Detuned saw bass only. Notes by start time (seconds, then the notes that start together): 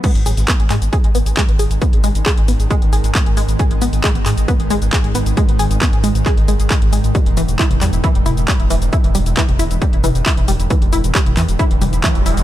0.15 G#1
0.26 G#1
0.37 G#1
0.60 G#1
0.70 G#2
0.82 G#1
1.04 G#1
1.15 G#1
1.26 G#1
1.49 G#1
1.59 G#1
1.71 G#1
1.93 G#1
2.04 G#1
2.15 G#1
2.37 G#1
2.48 G#1
2.60 G#1
2.82 G#1
2.93 G#1
3.04 G#1
3.26 G#1
3.37 G#1
3.48 G#1
3.71 G#1
3.81 G#1
3.93 G#1
4.15 G#1
4.26 G#2
4.37 G#1
4.60 G#1
4.70 G#1
4.82 G#1
5.04 G#1
5.15 G#1
5.26 G#1
5.48 G#1
5.59 G#1
5.71 G#1
5.93 G#1
6.04 G#1
6.15 G#1
6.37 G#1
6.48 G#1
6.60 G#1
6.82 G#1
6.93 G#1
7.04 G#1
7.26 E1
7.37 E1
7.48 E1
7.71 E1
7.81 E2
7.93 E1
8.15 E1
8.26 E1
8.37 E1
8.60 E1
8.70 E1
8.82 E1
9.04 E1
9.15 E1
9.26 E1
9.48 E1
9.59 E1
9.71 E1
9.93 E1
10.04 E1
10.15 E1
10.37 E1
10.48 E1
10.60 E1
10.82 E1
10.93 E1
11.04 E1
11.26 E1
11.37 E2
11.48 E1
11.71 E1
11.82 E1
11.93 E1
12.15 E1
12.26 E1
12.37 E1